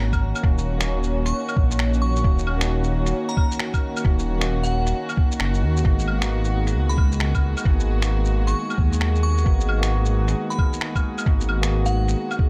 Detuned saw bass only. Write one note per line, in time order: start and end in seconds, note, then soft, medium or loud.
0.00 0.34 G#1 medium
0.44 1.33 D#1 loud
1.57 2.23 A#1 medium
2.24 3.13 D#1 loud
4.05 4.94 D#1 loud
5.40 5.64 F#1 medium
5.63 5.84 D#2 loud
5.85 6.76 G#1 loud
6.75 7.55 C#2 medium
7.65 8.55 G#1 loud
8.78 9.45 D#2 medium
9.46 10.35 G#1 loud
11.26 12.16 G#1 loud